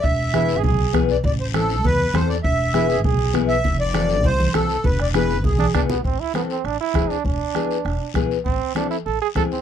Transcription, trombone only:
X:1
M:4/4
L:1/16
Q:1/4=200
K:Am
V:1 name="Trombone"
z4 E3 ^G G4- G z3 | z16 | z4 E2 ^G2 G4- G z3 | z16 |
z8 z2 D2 D2 B,2 | C2 E2 B,2 C2 D2 E4 D2 | D12 z4 | C4 D2 E2 A2 ^G2 A2 C2 |]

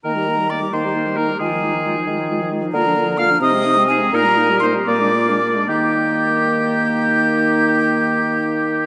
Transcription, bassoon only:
X:1
M:6/8
L:1/8
Q:3/8=83
K:Eb
V:1 name="Bassoon" clef=bass
E,3 E,3 | E,3 E,3 | D,3 C,3 | B,,3 B,,3 |
E,6- | E,6 |]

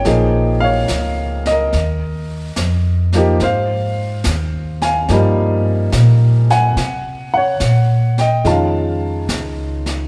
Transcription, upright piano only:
X:1
M:4/4
L:1/8
Q:"Swing" 1/4=71
K:Ab
V:1 name="Upright piano"
[dg] [df]2 [Be]4 z | [cf]3 [fa]4 [_ga]- | [_ga] [dg]2 [e=g] [f=a]3 z |]
V:2 name="Upright piano"
[F,B,EA] z6 [F,B,EG] | z4 [F,G,B,E]3 z | z4 [E,^G,^CF]3 z |]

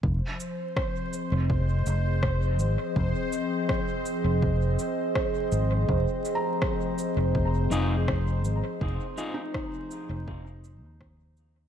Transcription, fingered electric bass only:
X:1
M:4/4
L:1/16
Q:1/4=82
K:Fm
V:1 name="Fingered electric bass" clef=bass
F,,, z6 F,,,3 F,,,4 A,,, z | F,,, z6 F,,,3 z4 A,,,2 | F,,, z6 F,,,3 F,,,4 A,,, z | F,,, z6 F,,,4 E,,4- E,, |]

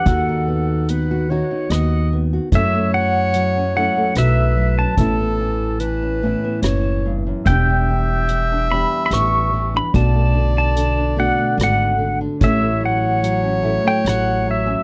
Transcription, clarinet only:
X:1
M:3/4
L:1/8
Q:1/4=73
K:Bm
V:1 name="Clarinet"
A2 B c ^d z | c4 B2 | A2 B2 c z | e6 |
d4- d z | c6 |]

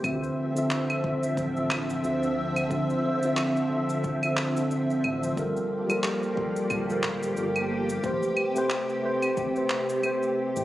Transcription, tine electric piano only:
X:1
M:4/4
L:1/16
Q:"Swing 16ths" 1/4=90
K:Dm
V:1 name="Tine electric piano"
[D,CFe]3 [D,CFe]3 [D,CFe]3 [D,CFe]3 [D,CFe]4 | [D,CFe]3 [D,CFe]3 [D,CFe]3 [D,CFe]3 [D,CFe]4 | [G,FAB]3 [G,FAB]3 [G,FAB]3 [G,FAB]3 [G,FAB]4 | [A,G=Bc]3 [A,GBc]3 [A,GBc]3 [A,GBc]3 [A,GBc]4 |]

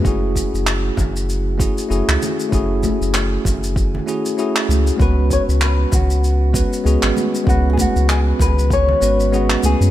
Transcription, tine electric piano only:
X:1
M:4/4
L:1/8
Q:"Swing 16ths" 1/4=97
K:F#m
V:1 name="Tine electric piano"
[A,CEFG]4- [A,CEFG] [A,CEFG] [A,CEFG]2 | [A,CEFG]4- [A,CEFG] [A,CEFG] [A,CEFG]2 | [G,B,CFB]4- [G,B,CFB] [G,B,CFB] [G,B,CFG]2 | [G,B,CFB]4- [G,B,CFB] [G,B,CFB] [G,B,CFG]2 |]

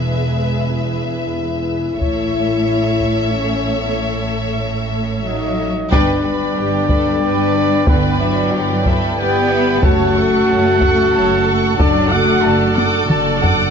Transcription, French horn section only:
X:1
M:3/4
L:1/16
Q:1/4=92
K:Alyd
V:1 name="French horn section"
G,4 E8 | E8 C3 B, | A,8 D4 | [K:Glyd] D12 |
B,2 D4 z2 G4 | F12 | D2 F4 z6 |]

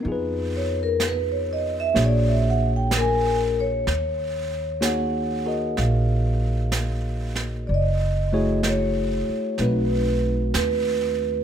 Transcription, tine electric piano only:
X:1
M:4/4
L:1/8
Q:"Swing" 1/4=63
K:Ebm
V:1 name="Tine electric piano"
[CEFAc]4 [B,=D^FA^c]4 | z2 [B,EGAd] [GABe]4- [GABe] | z [=A,_FG_Ad]3 [=A,=C^D^F=B]4 |]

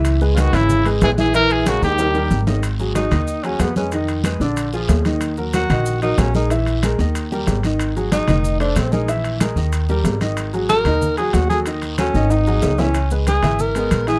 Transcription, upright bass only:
X:1
M:4/4
L:1/8
Q:1/4=186
K:G#m
V:1 name="Upright bass" clef=bass
C,,3 G,,,3 A,,,2- | A,,,3 D,,3 G,,,2- | G,,,3 D,,3 ^E,,2- | ^E,,3 A,,,3 D,,2- |
D,,3 A,,,3 A,,,2- | A,,,3 D,,3 G,,,2- | G,,,3 ^E,,,3 A,,,2- | A,,,3 D,,3 G,,,2- |
G,,,3 D,,3 D,,2- | D,,3 G,,,3 C,,2- | C,,3 G,,,3 A,,,2 |]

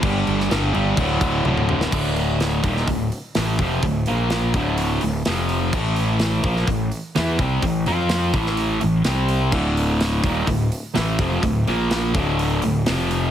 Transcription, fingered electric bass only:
X:1
M:4/4
L:1/8
Q:1/4=126
K:Dm
V:1 name="Fingered electric bass" clef=bass
G,,, G,,, G,,, G,,, D,,, D,,, D,,,2 | D,,,3 _E,,, D,,, z A,,, F,,, | D,,, B,,,2 D,,,2 D,,, F,,,2 | A,,,3 B,,, A,,, z E,, C,, |
A,,, F,,2 A,,,2 A,,, C,,2 | D,,,3 _E,,, D,,, z A,,, F,,, | D,,, B,,,2 D,,,2 D,,, F,,,2 |]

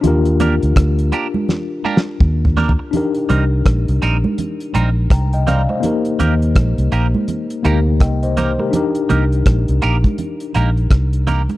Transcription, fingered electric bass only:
X:1
M:4/4
L:1/16
Q:"Swing 16ths" 1/4=83
K:Cm
V:1 name="Fingered electric bass" clef=bass
E,,3 D,, D,,2 z6 E,,3 z | z2 C,,2 B,,, C,, B,,, z3 B,,,2 C,,3 z | z2 E,,2 B,,, C,, B,,, z3 D,,2 C,,3 z | z2 C,,2 B,,, C,, B,,, z3 B,,,2 C,,3 z |]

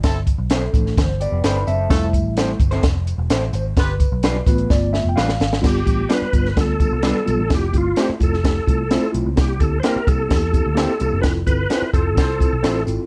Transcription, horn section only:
X:1
M:4/4
L:1/16
Q:1/4=128
K:Gmix
V:1 name="Horn section"
[CEA]2 z12 z2 | [A,FA]2 z12 z2 | [FGB]2 z12 z2 | z16 |
z16 | z16 | z6 [FAc] z [FAc]3 z4 z |]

